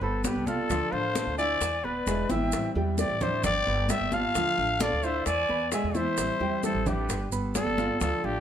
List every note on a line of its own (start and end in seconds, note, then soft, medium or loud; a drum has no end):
0.00 0.23 G1 medium
0.00 0.39 B3 medium
0.00 0.23 A4 medium
0.00 0.39 B4 medium
0.00 0.22 C5 medium
0.00 0.40 B5 medium
0.00 high bongo soft
0.00 high conga soft
0.23 0.46 D3 medium
0.23 0.46 G3 medium
0.23 0.47 B3 medium
0.23 0.48 G4 medium
0.23 0.46 G4 medium
0.23 0.48 B4 medium
0.23 high bongo medium
0.23 low bongo medium
0.23 high conga medium
0.23 maracas medium
0.36 0.57 C2 medium
0.46 0.70 G3 soft
0.46 0.69 B3 soft
0.46 0.66 F4 medium
0.46 0.69 G4 soft
0.46 0.94 A4 loud
0.46 0.93 D5 medium
0.46 0.66 F5 medium
0.46 0.66 F6 medium
0.46 high conga medium
0.46 maracas soft
0.70 0.81 D2 medium
0.70 0.92 D3 medium
0.70 1.07 F3 medium
0.70 0.92 A3 medium
0.70 0.92 D4 medium
0.70 1.07 F4 medium
0.70 0.91 F4 medium
0.70 1.07 F5 medium
0.70 high bongo medium
0.70 high conga soft
0.70 maracas medium
0.91 1.25 A1 medium
0.91 1.15 A3 soft
0.91 1.15 D4 soft
0.91 1.14 F4 soft
0.91 1.38 C5 loud
0.91 1.37 F5 medium
0.91 high bongo soft
0.91 high conga soft
1.15 1.37 D3 medium
1.15 1.34 A3 medium
1.15 1.37 A3 medium
1.15 1.38 D4 medium
1.15 1.36 F4 medium
1.15 1.34 A4 medium
1.15 1.35 A5 medium
1.15 high bongo medium
1.15 high conga medium
1.15 maracas medium
1.27 1.59 D2 medium
1.37 1.61 A3 soft
1.37 1.60 D4 soft
1.37 1.76 E4 medium
1.37 1.60 F4 soft
1.37 1.86 D5 loud
1.37 1.76 E5 medium
1.37 1.85 G#5 medium
1.37 1.76 E6 medium
1.37 high conga soft
1.37 maracas soft
1.61 1.83 E2 medium
1.61 muted nylon-string guitar stroke medium
1.61 high bongo medium
1.61 high conga soft
1.61 maracas medium
1.83 2.05 D1 medium
1.83 2.03 B3 medium
1.83 2.32 B4 medium
1.83 2.03 B4 medium
1.83 2.31 D5 medium
1.83 2.03 B5 medium
1.83 high bongo soft
1.83 high conga soft
2.06 2.27 E1 medium
2.06 2.28 B2 medium
2.06 2.29 D3 medium
2.06 2.26 G#3 medium
2.06 2.29 G#3 medium
2.06 2.29 B3 medium
2.06 2.28 E4 medium
2.06 2.26 G#4 medium
2.06 2.26 G#5 medium
2.06 high bongo medium
2.06 low bongo medium
2.06 high conga soft
2.06 maracas medium
2.29 2.50 G#1 medium
2.29 2.67 E3 medium
2.29 2.52 G#3 soft
2.29 2.51 E4 soft
2.29 2.68 E4 medium
2.29 2.72 E5 medium
2.29 2.68 E5 medium
2.29 2.71 G5 medium
2.29 high bongo medium
2.29 high conga medium
2.29 maracas soft
2.52 2.63 A1 medium
2.52 2.74 E3 medium
2.52 2.74 G3 medium
2.52 2.74 C4 medium
2.52 2.73 E4 medium
2.52 high bongo medium
2.52 high conga soft
2.52 maracas medium
2.74 3.08 E2 loud
2.74 3.13 G3 medium
2.74 2.97 G3 soft
2.74 2.97 C4 soft
2.74 2.97 E4 soft
2.74 3.13 G4 medium
2.74 3.14 G5 medium
2.74 high bongo soft
2.74 high conga soft
2.97 3.20 E3 medium
2.97 3.20 G3 medium
2.97 3.20 C4 medium
2.97 3.19 E4 medium
2.97 3.24 D5 medium
2.97 3.23 G5 medium
2.97 high bongo medium
2.97 high conga medium
2.97 maracas medium
3.10 3.42 A1 medium
3.20 3.43 G3 soft
3.20 3.43 C4 medium
3.20 3.58 D4 medium
3.20 3.43 E4 medium
3.20 3.44 C5 medium
3.20 3.59 D5 medium
3.20 3.44 E5 medium
3.20 3.59 D6 medium
3.20 high bongo soft
3.20 high conga soft
3.20 low conga medium
3.20 maracas soft
3.44 3.65 G1 medium
3.44 3.92 D5 loud
3.44 3.90 G5 medium
3.44 muted nylon-string guitar stroke medium
3.44 high bongo medium
3.44 high conga soft
3.44 low conga medium
3.44 maracas medium
3.67 3.88 G1 medium
3.67 4.04 B3 medium
3.67 4.04 B4 medium
3.67 4.05 B5 medium
3.67 high bongo soft
3.67 high conga soft
3.88 4.11 D3 medium
3.88 4.11 G3 medium
3.88 4.12 B3 medium
3.88 4.10 G4 medium
3.88 4.15 E5 medium
3.88 4.15 G5 medium
3.88 high bongo medium
3.88 low bongo medium
3.88 high conga medium
3.88 maracas medium
4.01 4.23 G1 medium
4.12 4.35 G3 soft
4.12 4.34 B3 soft
4.12 4.31 F4 medium
4.12 4.34 G4 medium
4.12 4.31 F5 medium
4.12 4.83 F5 loud
4.12 4.82 A5 medium
4.12 4.31 F6 medium
4.12 high conga medium
4.12 maracas soft
4.35 4.46 D2 medium
4.35 4.57 D3 medium
4.35 4.72 F3 medium
4.35 4.57 A3 medium
4.35 4.57 D4 medium
4.35 4.73 F4 medium
4.35 4.56 F4 medium
4.35 4.73 F5 medium
4.35 high bongo medium
4.35 high conga soft
4.35 maracas medium
4.57 4.90 A1 loud
4.57 4.79 A3 soft
4.57 4.80 D4 soft
4.57 4.79 F4 soft
4.57 high bongo soft
4.57 high conga soft
4.80 5.02 D3 medium
4.80 4.99 A3 medium
4.80 5.03 A3 medium
4.80 5.03 D4 medium
4.80 5.02 F4 medium
4.80 5.00 A4 medium
4.80 5.05 D5 loud
4.80 5.05 F5 medium
4.80 5.00 A5 medium
4.80 high bongo medium
4.80 high conga loud
4.80 maracas medium
4.92 5.25 D2 medium
5.03 5.26 A3 soft
5.03 5.26 D4 soft
5.03 5.41 E4 medium
5.03 5.25 F4 soft
5.03 5.26 C5 medium
5.03 5.25 E5 medium
5.03 5.41 E5 medium
5.03 5.42 E6 medium
5.03 high conga soft
5.03 maracas soft
5.26 5.48 E2 medium
5.26 5.69 D5 loud
5.26 5.69 G#5 medium
5.26 muted nylon-string guitar stroke medium
5.26 high bongo medium
5.26 high conga soft
5.26 maracas medium
5.49 5.71 E2 medium
5.49 5.68 B3 medium
5.49 5.68 B4 medium
5.49 5.68 B5 medium
5.49 high bongo soft
5.49 high conga soft
5.71 5.94 B2 medium
5.71 5.94 D3 medium
5.71 5.91 G#3 medium
5.71 5.94 G#3 medium
5.71 5.94 B3 medium
5.71 5.93 E4 medium
5.71 5.91 G#4 medium
5.71 5.97 E5 medium
5.71 5.96 G#5 medium
5.71 5.91 G#5 medium
5.71 high bongo medium
5.71 low bongo medium
5.71 high conga soft
5.71 maracas medium
5.84 6.05 E2 medium
5.94 6.32 E3 medium
5.94 6.17 G#3 soft
5.94 6.17 B3 soft
5.94 6.17 E4 soft
5.94 6.32 E4 medium
5.94 6.64 C5 loud
5.94 6.63 E5 medium
5.94 6.33 E5 medium
5.94 high bongo soft
5.94 high conga medium
5.94 maracas soft
6.17 6.29 A1 medium
6.17 6.39 E3 medium
6.17 6.40 G3 medium
6.17 6.40 C4 medium
6.17 6.39 E4 medium
6.17 high bongo medium
6.17 high conga soft
6.17 maracas medium
6.40 6.73 E2 medium
6.40 6.78 G3 medium
6.40 6.62 G3 soft
6.40 6.63 C4 soft
6.40 6.62 E4 medium
6.40 6.78 G4 medium
6.40 6.78 G5 medium
6.40 high bongo soft
6.40 high conga soft
6.63 6.85 E3 medium
6.63 6.86 G3 medium
6.63 6.86 C4 medium
6.63 6.85 E4 medium
6.63 6.89 A4 medium
6.63 6.87 C5 medium
6.63 high bongo medium
6.63 high conga medium
6.63 maracas medium
6.75 7.07 A1 medium
6.86 7.09 G3 soft
6.86 7.09 C4 soft
6.86 7.24 D4 medium
6.86 7.08 E4 soft
6.86 7.29 G4 medium
6.86 7.28 B4 medium
6.86 7.24 D5 medium
6.86 7.24 D6 medium
6.86 high conga soft
6.86 low conga medium
6.86 maracas soft
7.09 7.31 G1 medium
7.09 muted nylon-string guitar stroke medium
7.09 high bongo medium
7.09 high conga soft
7.09 maracas medium
7.32 7.54 G1 medium
7.32 7.69 B3 medium
7.32 7.70 B4 medium
7.32 7.70 B5 medium
7.32 high bongo soft
7.32 high conga soft
7.32 maracas medium
7.55 7.77 D3 medium
7.55 7.77 G3 medium
7.55 7.77 B3 medium
7.55 7.76 G4 medium
7.55 7.98 A4 loud
7.55 7.97 D5 medium
7.55 high bongo medium
7.55 low bongo medium
7.55 high conga medium
7.55 maracas medium
7.67 7.88 G1 medium
7.77 8.01 G3 soft
7.77 8.00 B3 soft
7.77 7.97 F4 medium
7.77 8.00 G4 soft
7.77 7.97 F5 medium
7.77 7.97 F6 medium
7.77 high conga medium
7.77 maracas soft
8.00 8.12 D2 medium
8.00 8.23 D3 medium
8.00 8.38 F3 medium
8.00 8.23 A3 medium
8.00 8.23 D4 medium
8.00 8.39 F4 medium
8.00 8.22 F4 medium
8.00 8.27 A4 loud
8.00 8.24 D5 medium
8.00 8.39 F5 medium
8.00 high bongo medium
8.00 high conga soft
8.00 maracas medium
8.23 8.40 A1 loud
8.23 8.40 A3 soft
8.23 8.40 D4 soft
8.23 8.40 F4 soft
8.23 8.40 G4 loud
8.23 8.40 D5 medium
8.23 high bongo soft
8.23 high conga soft